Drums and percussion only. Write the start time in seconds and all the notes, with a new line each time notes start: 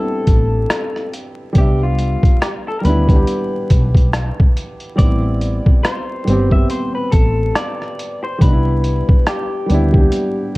0.27 kick, closed hi-hat
0.70 cross-stick, closed hi-hat
0.96 cross-stick
1.13 closed hi-hat
1.55 kick, closed hi-hat
1.99 closed hi-hat
2.23 kick, closed hi-hat
2.42 cross-stick, closed hi-hat
2.85 closed hi-hat
3.09 kick, closed hi-hat
3.27 closed hi-hat
3.70 kick, closed hi-hat
3.95 kick, closed hi-hat
4.13 cross-stick, closed hi-hat
4.40 kick
4.57 closed hi-hat
4.80 closed hi-hat
4.99 kick, closed hi-hat
5.41 closed hi-hat
5.66 kick
5.85 cross-stick, closed hi-hat
6.28 closed hi-hat
6.51 kick
6.70 closed hi-hat
7.12 kick, closed hi-hat
7.55 cross-stick, closed hi-hat
7.82 cross-stick
7.99 closed hi-hat
8.41 kick, closed hi-hat
8.84 closed hi-hat
9.09 kick
9.27 cross-stick, closed hi-hat
9.70 closed hi-hat
9.94 kick
10.12 closed hi-hat